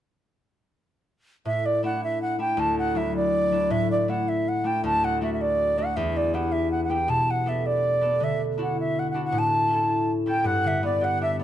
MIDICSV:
0, 0, Header, 1, 4, 480
1, 0, Start_track
1, 0, Tempo, 374766
1, 1871, Time_signature, 6, 3, 24, 8
1, 14647, End_track
2, 0, Start_track
2, 0, Title_t, "Flute"
2, 0, Program_c, 0, 73
2, 1873, Note_on_c, 0, 76, 90
2, 2123, Note_on_c, 0, 74, 87
2, 2143, Note_off_c, 0, 76, 0
2, 2357, Note_off_c, 0, 74, 0
2, 2370, Note_on_c, 0, 78, 87
2, 2581, Note_off_c, 0, 78, 0
2, 2614, Note_on_c, 0, 76, 91
2, 2837, Note_off_c, 0, 76, 0
2, 2844, Note_on_c, 0, 78, 78
2, 3061, Note_off_c, 0, 78, 0
2, 3078, Note_on_c, 0, 79, 88
2, 3325, Note_on_c, 0, 81, 102
2, 3344, Note_off_c, 0, 79, 0
2, 3562, Note_off_c, 0, 81, 0
2, 3570, Note_on_c, 0, 78, 89
2, 3803, Note_on_c, 0, 76, 76
2, 3822, Note_off_c, 0, 78, 0
2, 4034, Note_off_c, 0, 76, 0
2, 4051, Note_on_c, 0, 74, 104
2, 4752, Note_on_c, 0, 76, 110
2, 4772, Note_off_c, 0, 74, 0
2, 5003, Note_off_c, 0, 76, 0
2, 5012, Note_on_c, 0, 74, 85
2, 5246, Note_on_c, 0, 78, 77
2, 5266, Note_off_c, 0, 74, 0
2, 5490, Note_on_c, 0, 76, 82
2, 5509, Note_off_c, 0, 78, 0
2, 5745, Note_on_c, 0, 78, 82
2, 5764, Note_off_c, 0, 76, 0
2, 5976, Note_on_c, 0, 79, 84
2, 5995, Note_off_c, 0, 78, 0
2, 6200, Note_off_c, 0, 79, 0
2, 6212, Note_on_c, 0, 81, 99
2, 6461, Note_on_c, 0, 78, 99
2, 6480, Note_off_c, 0, 81, 0
2, 6686, Note_off_c, 0, 78, 0
2, 6703, Note_on_c, 0, 76, 75
2, 6823, Note_off_c, 0, 76, 0
2, 6831, Note_on_c, 0, 76, 63
2, 6933, Note_on_c, 0, 74, 86
2, 6952, Note_off_c, 0, 76, 0
2, 7411, Note_on_c, 0, 78, 83
2, 7430, Note_off_c, 0, 74, 0
2, 7637, Note_on_c, 0, 76, 86
2, 7657, Note_off_c, 0, 78, 0
2, 7901, Note_on_c, 0, 74, 80
2, 7920, Note_off_c, 0, 76, 0
2, 8125, Note_on_c, 0, 78, 78
2, 8144, Note_off_c, 0, 74, 0
2, 8351, Note_on_c, 0, 76, 93
2, 8371, Note_off_c, 0, 78, 0
2, 8593, Note_off_c, 0, 76, 0
2, 8601, Note_on_c, 0, 78, 77
2, 8756, Note_off_c, 0, 78, 0
2, 8763, Note_on_c, 0, 78, 59
2, 8837, Note_on_c, 0, 79, 86
2, 8856, Note_off_c, 0, 78, 0
2, 9088, Note_on_c, 0, 81, 104
2, 9107, Note_off_c, 0, 79, 0
2, 9356, Note_on_c, 0, 78, 87
2, 9375, Note_off_c, 0, 81, 0
2, 9589, Note_on_c, 0, 76, 76
2, 9608, Note_off_c, 0, 78, 0
2, 9814, Note_on_c, 0, 74, 90
2, 9833, Note_off_c, 0, 76, 0
2, 10551, Note_on_c, 0, 76, 88
2, 10570, Note_off_c, 0, 74, 0
2, 10783, Note_off_c, 0, 76, 0
2, 11043, Note_on_c, 0, 78, 67
2, 11239, Note_off_c, 0, 78, 0
2, 11273, Note_on_c, 0, 76, 86
2, 11517, Note_on_c, 0, 78, 71
2, 11537, Note_off_c, 0, 76, 0
2, 11656, Note_off_c, 0, 78, 0
2, 11662, Note_on_c, 0, 78, 66
2, 11806, Note_off_c, 0, 78, 0
2, 11843, Note_on_c, 0, 78, 91
2, 12022, Note_on_c, 0, 81, 89
2, 12041, Note_off_c, 0, 78, 0
2, 12958, Note_off_c, 0, 81, 0
2, 13174, Note_on_c, 0, 79, 80
2, 13394, Note_on_c, 0, 78, 95
2, 13413, Note_off_c, 0, 79, 0
2, 13669, Note_on_c, 0, 76, 82
2, 13688, Note_off_c, 0, 78, 0
2, 13882, Note_off_c, 0, 76, 0
2, 13890, Note_on_c, 0, 74, 71
2, 14144, Note_on_c, 0, 78, 83
2, 14163, Note_off_c, 0, 74, 0
2, 14364, Note_off_c, 0, 78, 0
2, 14372, Note_on_c, 0, 76, 79
2, 14585, Note_off_c, 0, 76, 0
2, 14600, Note_on_c, 0, 74, 83
2, 14647, Note_off_c, 0, 74, 0
2, 14647, End_track
3, 0, Start_track
3, 0, Title_t, "Accordion"
3, 0, Program_c, 1, 21
3, 13159, Note_on_c, 1, 79, 63
3, 13376, Note_off_c, 1, 79, 0
3, 13400, Note_on_c, 1, 78, 88
3, 13895, Note_off_c, 1, 78, 0
3, 13902, Note_on_c, 1, 74, 65
3, 14116, Note_on_c, 1, 78, 64
3, 14129, Note_off_c, 1, 74, 0
3, 14372, Note_off_c, 1, 78, 0
3, 14385, Note_on_c, 1, 76, 71
3, 14485, Note_off_c, 1, 76, 0
3, 14604, Note_on_c, 1, 74, 59
3, 14647, Note_off_c, 1, 74, 0
3, 14647, End_track
4, 0, Start_track
4, 0, Title_t, "Harp"
4, 0, Program_c, 2, 46
4, 1862, Note_on_c, 2, 45, 61
4, 2341, Note_on_c, 2, 57, 47
4, 2352, Note_on_c, 2, 62, 40
4, 2354, Note_on_c, 2, 64, 51
4, 3051, Note_off_c, 2, 57, 0
4, 3054, Note_off_c, 2, 62, 0
4, 3056, Note_on_c, 2, 57, 44
4, 3059, Note_on_c, 2, 62, 39
4, 3063, Note_off_c, 2, 64, 0
4, 3068, Note_on_c, 2, 64, 48
4, 3292, Note_on_c, 2, 38, 74
4, 3375, Note_off_c, 2, 45, 0
4, 3776, Note_on_c, 2, 54, 50
4, 3782, Note_off_c, 2, 62, 0
4, 3784, Note_off_c, 2, 64, 0
4, 3787, Note_on_c, 2, 62, 37
4, 3789, Note_on_c, 2, 64, 49
4, 4485, Note_off_c, 2, 54, 0
4, 4500, Note_on_c, 2, 54, 43
4, 4502, Note_off_c, 2, 62, 0
4, 4507, Note_on_c, 2, 62, 42
4, 4509, Note_off_c, 2, 64, 0
4, 4514, Note_on_c, 2, 64, 54
4, 4744, Note_on_c, 2, 45, 76
4, 4814, Note_off_c, 2, 38, 0
4, 4814, Note_off_c, 2, 54, 0
4, 5221, Note_off_c, 2, 57, 0
4, 5222, Note_off_c, 2, 62, 0
4, 5227, Note_on_c, 2, 57, 50
4, 5227, Note_on_c, 2, 62, 42
4, 5233, Note_off_c, 2, 64, 0
4, 5238, Note_on_c, 2, 64, 49
4, 5934, Note_off_c, 2, 57, 0
4, 5939, Note_on_c, 2, 57, 44
4, 5942, Note_off_c, 2, 62, 0
4, 5947, Note_on_c, 2, 62, 40
4, 5949, Note_off_c, 2, 64, 0
4, 5954, Note_on_c, 2, 64, 49
4, 6194, Note_on_c, 2, 38, 68
4, 6254, Note_off_c, 2, 45, 0
4, 6668, Note_off_c, 2, 57, 0
4, 6673, Note_on_c, 2, 57, 49
4, 6676, Note_off_c, 2, 62, 0
4, 6681, Note_on_c, 2, 62, 42
4, 6687, Note_on_c, 2, 66, 47
4, 7388, Note_off_c, 2, 57, 0
4, 7393, Note_on_c, 2, 57, 37
4, 7400, Note_off_c, 2, 62, 0
4, 7405, Note_on_c, 2, 62, 42
4, 7407, Note_off_c, 2, 66, 0
4, 7412, Note_on_c, 2, 66, 49
4, 7642, Note_on_c, 2, 40, 74
4, 7694, Note_off_c, 2, 38, 0
4, 8118, Note_on_c, 2, 59, 43
4, 8119, Note_off_c, 2, 64, 0
4, 8125, Note_on_c, 2, 64, 44
4, 8127, Note_on_c, 2, 67, 53
4, 8204, Note_off_c, 2, 66, 0
4, 8827, Note_off_c, 2, 59, 0
4, 8832, Note_on_c, 2, 59, 45
4, 8840, Note_off_c, 2, 64, 0
4, 8842, Note_off_c, 2, 67, 0
4, 8845, Note_on_c, 2, 64, 38
4, 8847, Note_on_c, 2, 67, 48
4, 9068, Note_on_c, 2, 47, 72
4, 9134, Note_off_c, 2, 40, 0
4, 9546, Note_off_c, 2, 59, 0
4, 9552, Note_on_c, 2, 59, 42
4, 9555, Note_off_c, 2, 62, 0
4, 9560, Note_on_c, 2, 62, 37
4, 9565, Note_on_c, 2, 69, 51
4, 10258, Note_off_c, 2, 59, 0
4, 10263, Note_on_c, 2, 59, 48
4, 10267, Note_off_c, 2, 62, 0
4, 10272, Note_off_c, 2, 69, 0
4, 10272, Note_on_c, 2, 62, 37
4, 10277, Note_on_c, 2, 69, 45
4, 10506, Note_on_c, 2, 50, 68
4, 10575, Note_off_c, 2, 47, 0
4, 10976, Note_off_c, 2, 62, 0
4, 10981, Note_on_c, 2, 62, 40
4, 10982, Note_off_c, 2, 64, 0
4, 10987, Note_on_c, 2, 64, 46
4, 11000, Note_on_c, 2, 66, 49
4, 11077, Note_off_c, 2, 67, 0
4, 11657, Note_off_c, 2, 57, 0
4, 11705, Note_off_c, 2, 62, 0
4, 11710, Note_on_c, 2, 62, 40
4, 11715, Note_off_c, 2, 64, 0
4, 11721, Note_on_c, 2, 64, 38
4, 11723, Note_off_c, 2, 66, 0
4, 11728, Note_on_c, 2, 66, 55
4, 11941, Note_on_c, 2, 45, 67
4, 12015, Note_off_c, 2, 50, 0
4, 12396, Note_on_c, 2, 61, 47
4, 12423, Note_off_c, 2, 64, 0
4, 12428, Note_on_c, 2, 64, 45
4, 12456, Note_off_c, 2, 69, 0
4, 12462, Note_on_c, 2, 69, 47
4, 12473, Note_off_c, 2, 62, 0
4, 13135, Note_off_c, 2, 61, 0
4, 13140, Note_on_c, 2, 61, 47
4, 13143, Note_off_c, 2, 64, 0
4, 13149, Note_on_c, 2, 64, 39
4, 13151, Note_off_c, 2, 69, 0
4, 13156, Note_on_c, 2, 69, 46
4, 13373, Note_on_c, 2, 43, 69
4, 13450, Note_off_c, 2, 66, 0
4, 13454, Note_off_c, 2, 45, 0
4, 13630, Note_on_c, 2, 50, 43
4, 13707, Note_off_c, 2, 61, 0
4, 13865, Note_off_c, 2, 59, 0
4, 13870, Note_on_c, 2, 59, 58
4, 14103, Note_on_c, 2, 67, 46
4, 14364, Note_on_c, 2, 62, 53
4, 14590, Note_off_c, 2, 59, 0
4, 14595, Note_on_c, 2, 59, 49
4, 14647, Note_off_c, 2, 43, 0
4, 14647, Note_off_c, 2, 50, 0
4, 14647, Note_off_c, 2, 59, 0
4, 14647, Note_off_c, 2, 62, 0
4, 14647, Note_off_c, 2, 64, 0
4, 14647, Note_off_c, 2, 67, 0
4, 14647, Note_off_c, 2, 69, 0
4, 14647, End_track
0, 0, End_of_file